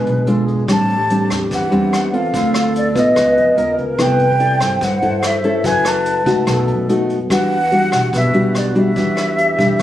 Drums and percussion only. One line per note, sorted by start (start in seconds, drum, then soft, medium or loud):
0.06 closed hi-hat soft
0.27 closed hi-hat soft
0.48 closed hi-hat soft
0.68 kick medium
0.68 cross-stick medium
0.68 closed hi-hat soft
0.89 closed hi-hat soft
1.10 closed hi-hat soft
1.30 cross-stick medium
1.30 closed hi-hat soft
1.51 kick medium
1.51 closed hi-hat soft
1.72 closed hi-hat soft
1.93 cross-stick medium
1.93 closed hi-hat soft
2.13 closed hi-hat soft
2.34 kick medium
2.34 closed hi-hat soft
2.54 cross-stick medium
2.54 closed hi-hat soft
2.76 closed hi-hat soft
2.96 kick medium
2.96 closed hi-hat soft
3.16 kick medium
3.16 cross-stick medium
3.16 closed hi-hat soft
3.37 closed hi-hat soft
3.58 closed hi-hat soft
3.78 closed hi-hat soft
3.99 kick medium
3.99 cross-stick medium
3.99 closed hi-hat soft
4.19 closed hi-hat soft
4.40 closed hi-hat soft
4.60 cross-stick medium
4.60 closed hi-hat soft
4.81 kick medium
4.81 closed hi-hat soft
5.02 closed hi-hat soft
5.23 cross-stick medium
5.23 closed hi-hat soft
5.44 closed hi-hat soft
5.64 kick medium
5.64 closed hi-hat soft
5.85 cross-stick medium
5.85 closed hi-hat soft
6.05 closed hi-hat soft
6.26 kick medium
6.26 closed hi-hat soft
6.47 kick medium
6.47 cross-stick medium
6.47 closed hi-hat soft
6.68 closed hi-hat soft
6.89 closed hi-hat soft
7.10 closed hi-hat soft
7.30 kick medium
7.30 cross-stick medium
7.30 closed hi-hat soft
7.51 closed hi-hat soft
7.71 closed hi-hat soft
7.92 cross-stick medium
7.92 closed hi-hat soft
8.13 kick medium
8.13 closed hi-hat soft
8.34 closed hi-hat soft
8.55 cross-stick medium
8.55 closed hi-hat soft
8.75 closed hi-hat soft
8.96 kick medium
8.96 closed hi-hat soft
9.17 cross-stick medium
9.17 closed hi-hat soft
9.38 closed hi-hat soft
9.59 kick medium
9.59 closed hi-hat soft